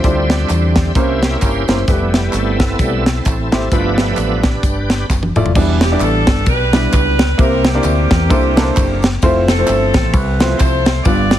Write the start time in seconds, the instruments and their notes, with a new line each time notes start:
Already playing: tonewheel organ G4 C5 E5
0.03 fingered electric bass D2, tonewheel organ D3 G3 C4 D4, grand piano D3 G3 E4 F4 C5, kick, closed hi-hat, tambourine
0.30 snare, closed hi-hat, tambourine
0.49 fingered electric bass E2, clap, closed hi-hat, tambourine
0.76 kick, snare, closed hi-hat, tambourine
0.95 fingered electric bass C2, grand piano C3 A#3 C#4 E4 C5, tonewheel organ A#3 C#4 E4, kick, closed hi-hat, tambourine
1.22 snare, closed hi-hat, tambourine
1.41 fingered electric bass G1, tonewheel organ E4 G4 C5, kick, clap, closed hi-hat, tambourine
1.68 fingered electric bass F#1, grand piano A#3 C#4 E4 C5, snare, closed hi-hat, tambourine
1.88 fingered electric bass F1, tonewheel organ G3 A3 B3 E4 G4, grand piano A3 E4 G4 B4, kick, closed hi-hat, tambourine
2.14 snare, closed hi-hat, tambourine
2.33 fingered electric bass G1, tonewheel organ C4 E4 A4, clap, closed hi-hat, tambourine
2.60 kick, snare, closed hi-hat, tambourine
2.79 fingered electric bass B1, tonewheel organ G3 A3 B3 C4 E4 A4, kick, closed hi-hat, tambourine
3.06 snare, closed hi-hat, tambourine
3.25 fingered electric bass A1, kick, clap, closed hi-hat, tambourine
3.52 fingered electric bass G#1, grand piano A3 E4 G4 C5, snare, closed hi-hat, tambourine
3.72 fingered electric bass G1, grand piano G2 A3 E4 F4 B4, tonewheel organ F3 A3 B3 D4 G4 B4 E5, kick, closed hi-hat, tambourine
3.98 snare, closed hi-hat, tambourine
4.17 fingered electric bass A1, clap, closed hi-hat, tambourine
4.43 kick, snare, closed hi-hat, tambourine
4.63 fingered electric bass G1, kick, closed hi-hat, tambourine
4.90 snare, closed hi-hat, tambourine
5.10 fingered electric bass F#1, kick, snare, clap, tambourine
5.23 high tom
5.35 fingered electric bass F1, grand piano A3 E4 F4 D5, mid tom, tambourine
5.46 floor tom
5.55 fingered electric bass E1, grand piano E3 G3 B3 D4 E4 B4, kick, crash, tambourine
5.81 saxophone section G4, snare, ride, tambourine
5.92 grand piano G3 B3 D4 E4 D5
6.00 fingered electric bass A1, saxophone section D4 A4, clap, ride, tambourine
6.27 fingered electric bass G1, kick, snare, ride, tambourine
6.46 fingered electric bass B1, saxophone section D4 G4 B4, kick, ride, tambourine
6.73 grand piano G3 B3 D4 E4 B4, snare, ride, tambourine
6.93 fingered electric bass C#2, saxophone section D4 G4 B4, kick, clap, ride, tambourine
7.19 snare, ride, tambourine
7.38 fingered electric bass C2, grand piano C3 A#3 C4 E4 G4 C5, saxophone section E4 G4 A#4, kick, ride, tambourine
7.65 saxophone section A#3 E4 G4, snare, ride, tambourine
7.74 grand piano A#3 C4 D4 G4 D5
7.80 grand piano E4, clap, tambourine
7.84 fingered electric bass D2, ride
8.11 fingered electric bass E2, kick, snare, ride, tambourine
8.30 fingered electric bass C2, grand piano C3 A#3 D4 E4 A4 C5, kick, ride, tambourine
8.56 grand piano A#3 D4 E4 A4 B4, snare, ride, tambourine
8.62 grand piano C5
8.77 fingered electric bass F#1, kick, clap, ride, tambourine
9.02 snare, ride, tambourine
9.22 fingered electric bass F1, grand piano A3 C4 E4 F4 C5, kick, ride, tambourine
9.48 saxophone section A4, snare, ride, tambourine
9.59 grand piano F3 A3 C4 E4 C5
9.67 fingered electric bass G1, saxophone section C4 E4 A4, clap, ride, tambourine
9.94 fingered electric bass A1, kick, snare, ride, tambourine
10.12 fingered electric bass C2, saxophone section E4 B4, kick, ride, tambourine
10.40 grand piano F3 A3 C4 E4 C5, snare, ride, tambourine
10.58 fingered electric bass C2, saxophone section E4 A4 C5, kick, clap, ride, tambourine
10.86 snare, ride, tambourine
11.03 fingered electric bass G1, grand piano G2 G3 B3 D4 F4 B4, saxophone section F4 B4 D5, kick, ride, tambourine
11.31 snare, ride, tambourine